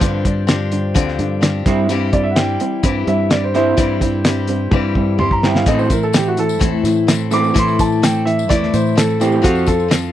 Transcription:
Already playing: C5
0.00 G2 D3 F3 C4 D4 G4, kick, closed hi-hat
0.25 G2 D3 F3 C4 D4 G4, kick, closed hi-hat
0.47 G2 D3 F3 C4 D4 G4, snare, closed hi-hat
0.72 G2 D3, closed hi-hat
0.94 D2 G2 D3 F3 C4 D4 G4, kick, closed hi-hat
1.08 snare
1.19 G2 D3, closed hi-hat
1.41 G2 D3 F3 C4 D4 G4, snare, closed hi-hat
1.66 G2 G3 C4 E4 G4, kick, snare, closed hi-hat
1.89 G2 E3 G3 C4 E4 G4, closed hi-hat
2.13 G3 C4 D5, kick, closed hi-hat
2.23 E5
2.31 F#5
2.36 G3 C4 E4 G4 G5, snare, closed hi-hat
2.60 G3 C4, closed hi-hat
2.83 G2 E3 G3 C4 E4 G4, kick, closed hi-hat
3.07 G2 G3 C4 E5, closed hi-hat
3.30 G3 C4 E4 G4 D5, snare, closed hi-hat
3.44 C5
3.54 G3 C4 E4 G4 C5, snare, closed hi-hat
3.77 G2 E3 G3 C4 E4 G4, kick, closed hi-hat
4.01 G3 C4 E4 G4, kick, closed hi-hat
4.25 G3 C4 E4 G4, snare, closed hi-hat
4.48 G3 C4, closed hi-hat
4.71 G2 E3 G3 C4 E4 G4, kick, high tom
4.95 G2 G3 C4, kick
5.18 G3 C4 E4 G4 C6, mid tom
5.31 A#5, kick
5.43 G3 C4 E4 G4 G5, snare
5.55 F5, snare
5.66 A2 E3 A3 C4 E4 A4 D#5, kick, closed hi-hat
5.79 C5, tambourine
5.90 A2 E3 A3 C4 E4 A4 A#4, kick, closed hi-hat, tambourine
6.03 A4, tambourine
6.13 A2 E3 A3 C4 E4 G4 A4, snare, closed hi-hat, tambourine
6.28 F#4
6.37 A2 E3 A4, closed hi-hat, tambourine
6.49 tambourine
6.59 E2 A2 E3 A3 C4 E4 A4, kick, closed hi-hat
6.83 A2 E3, snare, closed hi-hat, tambourine
6.97 tambourine
7.07 A2 E3 A3 C4 E4 A4, snare, closed hi-hat, tambourine
7.30 A2 E3 A3 C4 E4 A4 D6, closed hi-hat, tambourine
7.44 tambourine
7.54 A2 E3 A3 C4 E4 A4, kick, closed hi-hat
7.59 C6
7.68 tambourine
7.79 A2 E3 A5, kick, closed hi-hat, tambourine
7.92 tambourine
8.02 A2 E3 A3 C4 E4 A4 G5, snare, closed hi-hat, tambourine
8.25 A2 E3 E5, closed hi-hat, tambourine
8.39 tambourine
8.49 E2 A2 E3 A3 C4 E4 A4 D5, kick, closed hi-hat
8.63 snare
8.73 A2 E3 C5, closed hi-hat, tambourine
8.87 tambourine
8.95 A2 E3 A3 C4 E4 A4, snare, closed hi-hat, tambourine
9.10 tambourine
9.20 A2 E3 A3 C4 E4 G4 A4, closed hi-hat, tambourine
9.32 tambourine
9.42 F2 F3 C4 F4 F#4 A4, kick, closed hi-hat
9.55 tambourine
9.66 F3 C4 A4, kick, closed hi-hat, tambourine
9.79 tambourine
9.88 F3 C4 F4 A4, snare, closed hi-hat, tambourine

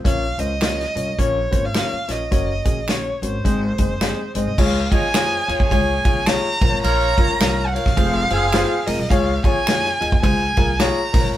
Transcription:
0.04 A#1 A#3 C#4 F4 C#5 F5, kick, closed hi-hat
0.38 C#2 A#3 C#4 F4 C5 D#5, closed hi-hat
0.61 A#3 C#4 F4 C#5, finger snap, snare, closed hi-hat
0.80 snare
0.95 C2 A#3 C#4 F4 C#5, closed hi-hat
1.18 A#1 A#3 C#4 F4 C#5, kick, closed hi-hat
1.51 G#1 A#3 C#4 F4 C5, kick, closed hi-hat
1.65 F5
1.74 A#3 C#4 F4 C#5, finger snap, snare, closed hi-hat
1.92 muted upright bass stroke
2.08 A#1 A#3 C#4 F4 C#5 D#5, snare, closed hi-hat
2.31 F#1 A#3 C#4 F#4 C#5, kick, closed hi-hat
2.65 A#1 A#3 C#4 F#4 G#4, kick, closed hi-hat
2.88 A#3 C#4 F#4 C#5, finger snap, snare, closed hi-hat
3.22 G#1 A#3 C#4 F#4 C5 C#5, closed hi-hat
3.44 G#1 G#3 C4 D#4 C5, kick, closed hi-hat
3.78 F#1 G#3 C4 D#4 C5, kick, closed hi-hat
4.01 G#3 C4 D#4 G#4, finger snap, snare, closed hi-hat
4.35 G#1 G#3 C4 D#4 C5 D#5, closed hi-hat
4.47 C2
4.58 C#2 F4 G#4 C#5 F5, kick, crash
4.91 F2 F4 G#4 C#5 D#5 G#5, kick, ride
5.13 F4 G#4 C5 C#5 D#5, finger snap, snare, ride
5.47 D#2 F4 G#4 C#5, ride
5.60 kick
5.70 C#2 F4 G#4 C#5 G#5, kick, ride
6.05 C2 F4 G#4 C#5, kick, ride
6.26 F4 G#4 C#5 A#5, finger snap, snare, ride
6.61 A#1 F4 A#4 C5, kick, ride
6.69 G#1 C#5
6.83 A#1 F4 A#4 C#5 A#5, ride
7.18 C#2 F4 A#4 C#5, kick, ride
7.29 C#4 F4 A#4
7.40 C2 F4 A#4 C#5, finger snap, snare, ride
7.67 F#5
7.73 F4 A#4 C#5 F5, ride
7.86 A#1, kick, snare
7.97 F1 F4 G#4 C5, kick, ride
8.30 F#1 C4 F4 G#4 C5, ride
8.53 F4 G#4 C5, finger snap, snare, ride
8.86 F1 F4 G#4 A#4 D#5, open hi-hat, ride
8.99 C2
9.10 C#2 F4 G#4 C#5 F5, kick, hi-hat pedal, ride
9.43 F2 F4 G#4 C#5 G#5, kick, ride
9.67 F4 G#4 C#5, finger snap, snare, ride
9.85 snare
10.00 D#2 F4 G#4 D#5, ride
10.12 kick
10.22 C#2 F4 G#4 C5 G#5, kick, ride
10.57 C2 F4 G#4 A#4, kick, ride
10.79 F4 G#4 C#5 A#5, finger snap, snare, ride
11.13 A#1 F4 A#4 C5, kick, snare, open hi-hat, ride
11.20 C#5
11.25 G#1
11.34 A#5

